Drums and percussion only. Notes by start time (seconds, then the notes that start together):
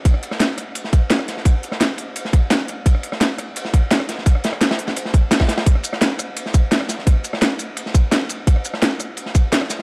0.05 kick, closed hi-hat, ride
0.14 cross-stick
0.23 closed hi-hat, ride
0.31 cross-stick, snare
0.40 snare, closed hi-hat, ride
0.58 cross-stick, closed hi-hat, ride
0.75 closed hi-hat, ride
0.84 snare
0.93 kick, closed hi-hat, ride
1.10 snare, closed hi-hat, ride
1.19 cross-stick
1.28 snare, closed hi-hat, ride
1.37 snare
1.45 kick, closed hi-hat, ride
1.63 closed hi-hat, ride
1.71 cross-stick, snare
1.81 snare, closed hi-hat, ride
1.98 closed hi-hat, ride
2.16 closed hi-hat, ride
2.25 snare
2.33 kick, closed hi-hat, ride
2.50 snare, closed hi-hat, ride
2.60 ride
2.68 closed hi-hat, ride
2.86 kick, closed hi-hat, ride
2.95 cross-stick
3.03 closed hi-hat, ride
3.12 cross-stick, snare
3.21 snare, closed hi-hat, ride
3.38 cross-stick, closed hi-hat, ride
3.56 closed hi-hat, ride
3.65 snare
3.73 kick, closed hi-hat, ride
3.91 snare, closed hi-hat, ride
4.00 cross-stick
4.09 snare, closed hi-hat, ride
4.18 snare
4.26 kick, closed hi-hat, ride
4.35 cross-stick
4.44 snare, closed hi-hat, ride
4.53 cross-stick
4.61 snare, closed hi-hat, ride
4.71 snare, ride
4.79 closed hi-hat
4.88 snare, ride
4.96 closed hi-hat, ride
5.05 snare
5.13 kick, closed hi-hat, ride
5.31 snare, closed hi-hat, ride
5.40 kick, cross-stick, snare, ride
5.48 snare, closed hi-hat, ride
5.58 snare, ride
5.66 kick, closed hi-hat, ride
5.75 cross-stick
5.83 closed hi-hat, ride, shaker
5.93 cross-stick, snare
6.01 snare, closed hi-hat, ride
6.19 cross-stick, closed hi-hat, ride, shaker
6.37 closed hi-hat, ride
6.46 snare
6.54 kick, closed hi-hat, ride, shaker
6.72 snare, closed hi-hat, ride
6.81 cross-stick
6.89 snare, closed hi-hat, ride, shaker
6.99 snare
7.07 kick, closed hi-hat, ride
7.24 closed hi-hat, ride, shaker
7.33 cross-stick, snare
7.41 snare, closed hi-hat, ride
7.59 closed hi-hat, ride, shaker
7.77 closed hi-hat, ride
7.86 snare
7.94 kick, closed hi-hat, ride, shaker
8.12 snare, closed hi-hat, ride
8.21 ride
8.29 closed hi-hat, ride, shaker
8.47 kick, closed hi-hat, ride
8.56 cross-stick
8.65 closed hi-hat, ride, shaker
8.74 cross-stick, snare
8.82 snare, closed hi-hat, ride
8.99 cross-stick, closed hi-hat, ride, shaker
9.17 closed hi-hat, ride
9.26 snare
9.35 kick, closed hi-hat, ride, shaker
9.53 snare, closed hi-hat, ride
9.61 cross-stick
9.70 snare, closed hi-hat, ride, shaker
9.79 snare